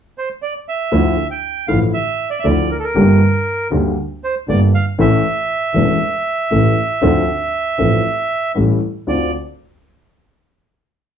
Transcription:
0.18 bandoneon C5
0.42 bandoneon D5
0.68 bandoneon E5
0.92 grand piano D2 D3 F3 A3 E4, double bass D2
1.31 bandoneon G5
1.68 grand piano A1 A2 D3 F3 A3 E4, double bass A1, bandoneon F5
1.94 bandoneon E5
2.30 bandoneon D5
2.39 bandoneon E5
2.44 grand piano D2 D3 F3 A3 E4, double bass D2, bandoneon D5
2.71 bandoneon A#4
2.79 bandoneon A4
2.84 bandoneon A#4
2.95 double bass G1, grand piano G1 G2 D3 G3 A#3 G4
3.71 double bass D2, grand piano D2 D3 G3 A#3 G4
4.24 bandoneon C5
4.48 double bass G1, grand piano G1 G2 D3 G3 A#3 G4, bandoneon D5
4.75 bandoneon F5
4.99 double bass A1, grand piano A1 A2 E3 A3 C#4 A4, bandoneon E5
5.74 grand piano E1 E2 E3 A3 C#4 A4, double bass E1
6.51 double bass A1, grand piano A1 A2 E3 A3 C#4 A4
7.02 double bass D2, grand piano D2 D3 F3 C4 D4 A4
7.78 double bass A1, grand piano A1 A2 F3 C4 D4 A4
8.55 grand piano A1 A2 G3 C#4 E4 A4, double bass A1
9.07 double bass D2, grand piano D2 C4 D4 F4, bandoneon D5

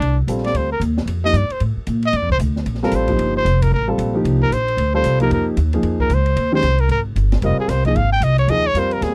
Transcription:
Already playing: trumpet D4
0.01 upright bass C2, ride
0.27 upright bass A#1, grand piano G3 C4 F4 A4, hi-hat pedal, ride
0.38 snare
0.44 trumpet D5, snare, ride
0.54 upright bass D2, trumpet C5, ride
0.72 trumpet A#4
0.80 upright bass D#2, hi-hat pedal, ride
0.97 snare
1.06 upright bass F2, ride
1.24 grand piano F3 A#3 D#4 G4, trumpet D#5
1.33 upright bass G2, trumpet D5, hi-hat pedal, ride
1.49 trumpet C5, muted upright bass stroke, ride
1.60 upright bass A2, ride
1.77 muted upright bass stroke
1.87 upright bass A#2, hi-hat pedal, ride
2.02 trumpet D#5, ride
2.13 upright bass G2, trumpet D5, ride
2.22 upright bass F2
2.30 upright bass C2, trumpet C5, kick
2.39 upright bass D2, hi-hat pedal, ride
2.56 snare
2.66 upright bass A#1, ride
2.75 snare
2.83 grand piano G3 C4 F4 A4, trumpet A#4, snare
2.92 upright bass A1, trumpet C5, hi-hat pedal, ride
3.08 grand piano F3 A#3 D#4 G4, kick, ride
3.18 upright bass G1, ride
3.37 trumpet C5
3.45 upright bass F1, hi-hat pedal, ride
3.62 trumpet A#4, kick, ride
3.72 upright bass A1, trumpet A#4
3.88 grand piano G3 C4 F4 A4
3.98 upright bass A#1, hi-hat pedal, ride
4.15 grand piano F3 A#3 D#4 G4
4.24 upright bass C2, ride
4.43 trumpet A#4
4.50 upright bass A#1, trumpet C5, hi-hat pedal, ride
4.68 ride
4.77 upright bass D2, ride
4.94 grand piano G3 C4 F4 A4, trumpet C5
5.04 upright bass C2, hi-hat pedal, ride
5.20 grand piano F3 A#3 D#4 G4, trumpet A#4, ride
5.31 upright bass F2, trumpet A#4, ride
5.57 upright bass D#2, hi-hat pedal, ride
5.73 grand piano F3 A#3 D#4 G#4, ride
5.83 upright bass F2, ride
6.00 trumpet A#4, kick
6.09 upright bass C#2, hi-hat pedal, ride
6.14 trumpet C5
6.26 ride
6.36 upright bass D#2, ride
6.52 grand piano D#3 G#3 C#4 G4, trumpet C5
6.63 upright bass C2, hi-hat pedal, ride
6.78 trumpet A#4, ride
6.89 upright bass G#1, trumpet A#4, ride
7.16 upright bass G1, hi-hat pedal, ride
7.32 snare, ride
7.42 upright bass F1, grand piano G3 C4 F4 A#4, trumpet D#5, ride
7.60 trumpet G#4
7.68 upright bass C2, trumpet C5, snare, hi-hat pedal, ride
7.85 grand piano F3 A#3 D#4 G#4, trumpet D#5, kick, ride
7.95 upright bass G#1, trumpet F5, ride
8.12 trumpet G5
8.21 upright bass C2, trumpet D#5, hi-hat pedal, ride
8.38 trumpet C#5, ride
8.48 upright bass D#2, grand piano F3 A#3 D#4 G#4, trumpet D#5, ride
8.67 trumpet C#5
8.74 upright bass F2, grand piano G3 C4 F4 A#4, hi-hat pedal, ride
8.79 trumpet C5
8.91 trumpet A#4, ride
9.01 upright bass D#2, trumpet G#4, snare, ride

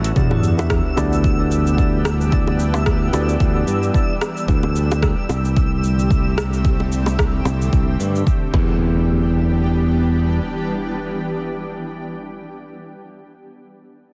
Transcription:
Already playing: fingered electric bass A1, ambient pad D3 F#3 A3 B3 F#4, synth texture E6
0.04 closed hi-hat, cabasa
0.15 fingered electric bass E2, ambient pad E3 G3 B3 D4 G4, tine electric piano B3 D4 E4 G4 D5, synth texture E6, kick, sub drop, cabasa
0.31 high bongo
0.43 cabasa
0.57 tine electric piano B3 D4 E4 G4 E5, high bongo, cabasa
0.70 kick, cross-stick, cabasa
0.96 fingered electric bass D2, tine electric piano B3 D4 E4 G4 D5, high bongo, cabasa
1.13 cabasa
1.24 kick, cabasa
1.38 tine electric piano B3 D4 E4 G4 D5
1.51 cabasa
1.67 cabasa
1.77 tine electric piano B3 D4 E4 G4 D5, kick, cabasa
2.05 cross-stick, high bongo, cabasa
2.21 cabasa
2.31 tine electric piano B3 D4 E4 G4 D5, kick, cabasa
2.47 high bongo
2.60 cabasa
2.73 tine electric piano B3 D4 E4 G4 E5, high bongo, cabasa
2.86 kick, cross-stick, cabasa
3.12 fingered electric bass D2, tine electric piano B3 D4 E4 G4 D5, high bongo, cabasa
3.29 cabasa
3.40 fingered electric bass D2, kick, cabasa
3.54 tine electric piano B3 D4 E4 G4 D5
3.67 fingered electric bass G2, cabasa
3.83 cabasa
3.93 tine electric piano B3 D4 E4 G4 D5, kick, cabasa
4.21 cross-stick, high bongo, cabasa
4.37 cabasa
4.48 fingered electric bass D2, ambient pad D3 A3 C4 G4, kick, cabasa
4.63 high bongo
4.76 cabasa
4.91 high bongo, cabasa
5.02 kick, cross-stick, cabasa
5.29 fingered electric bass C2, high bongo, cabasa
5.45 cabasa
5.57 kick, cabasa
5.84 cabasa
5.99 cabasa
6.11 kick, cabasa
6.38 cross-stick, high bongo, cabasa
6.53 cabasa
6.65 kick, cabasa
6.80 high bongo
6.92 cabasa
7.06 high bongo, cabasa
7.19 kick, cross-stick, cabasa
7.45 fingered electric bass C2, high bongo, cabasa
7.62 cabasa
7.73 fingered electric bass C2, kick, cabasa
8.00 fingered electric bass G2, cabasa
8.15 cabasa
8.27 kick, cabasa
8.54 fingered electric bass E2, ambient pad E3 G3 B3 D4 G4, kick, high bongo, impact

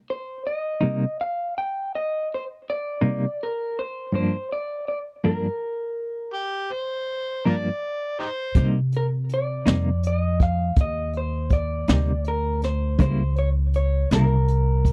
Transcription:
0.10 clean electric guitar C5
0.47 clean electric guitar D#5
0.81 clean electric guitar C3 G3 A#3 D#4
1.21 clean electric guitar F5
1.58 clean electric guitar G5
1.95 clean electric guitar D#5
2.34 clean electric guitar C5
2.70 clean electric guitar D5
3.01 clean electric guitar C3 G3 A#3 D#4
3.43 clean electric guitar A#4
3.79 clean electric guitar C5
4.12 clean electric guitar G2 F3 A#3 D4 C5
4.52 clean electric guitar D5
4.88 clean electric guitar D5
5.24 clean electric guitar G2 F3 A#3 D4 A#4
6.34 harmonica G4
6.72 harmonica C5
7.46 clean electric guitar G2 F3 A#3 D4, harmonica F4 A#4 D5
8.19 harmonica D#4 G4 C5
8.55 upright bass C3, clean electric guitar C3 G3 A#3 D#4, kick, closed hi-hat
8.92 closed hi-hat
8.97 clean electric guitar A#4
9.29 closed hi-hat
9.34 clean electric guitar D5
9.66 upright bass F2, clean electric guitar C3 G3 A#3 D#4, snare, closed hi-hat
10.03 clean electric guitar D#5, closed hi-hat
10.40 clean electric guitar F5, kick, closed hi-hat
10.76 upright bass D#2, kick, closed hi-hat
10.81 clean electric guitar D#5
11.13 closed hi-hat
11.17 clean electric guitar C5
11.50 clean electric guitar D5, kick, closed hi-hat
11.88 upright bass D2, clean electric guitar C3 G3 A#3 D#4, snare, closed hi-hat
12.24 clean electric guitar A#4, closed hi-hat
12.62 clean electric guitar C5, snare, closed hi-hat
12.99 upright bass C#2, clean electric guitar C#3 G3 A#3 E4 C5, kick, closed hi-hat
13.36 clean electric guitar C#5, closed hi-hat
13.74 clean electric guitar C#5, closed hi-hat
14.11 upright bass C2, clean electric guitar C#3 G3 A#3 E4 A#4, snare, closed hi-hat
14.48 closed hi-hat
14.85 kick, closed hi-hat

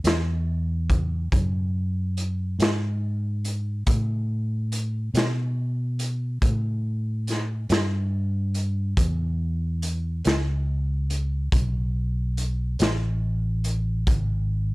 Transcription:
0.04 fingered electric bass E2, snare, closed hi-hat
0.90 kick, closed hi-hat
1.32 fingered electric bass F#2, kick, closed hi-hat
2.17 closed hi-hat
2.59 fingered electric bass G#2, snare, closed hi-hat
3.45 closed hi-hat
3.87 fingered electric bass A2, kick, closed hi-hat
4.72 closed hi-hat
5.14 fingered electric bass B2, snare, closed hi-hat
5.99 closed hi-hat
6.42 fingered electric bass A2, kick, closed hi-hat
7.27 snare, closed hi-hat
7.69 fingered electric bass G2, snare, closed hi-hat
8.54 closed hi-hat
8.97 fingered electric bass E2, kick, closed hi-hat
9.82 closed hi-hat
10.25 fingered electric bass C#2, snare, closed hi-hat
11.10 closed hi-hat
11.52 fingered electric bass B1, kick, closed hi-hat
12.37 closed hi-hat
12.79 fingered electric bass A1, snare, closed hi-hat
13.64 closed hi-hat
14.07 fingered electric bass G#1, kick, closed hi-hat

